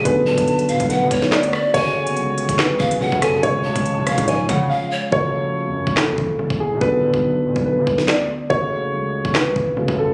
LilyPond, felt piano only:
\new Staff \with { instrumentName = "Felt piano" } { \time 4/4 \key fis \minor \tempo 4 = 142 <d b fis' a'>1 | <cis a fis' gis'>2. <cis a fis' gis'>4 | <cis gis eis'>1 | <cis a fis' a'>1 |
<d b fis' a'>1 | <cis a fis' gis'>2. <cis a fis' gis'>4 | }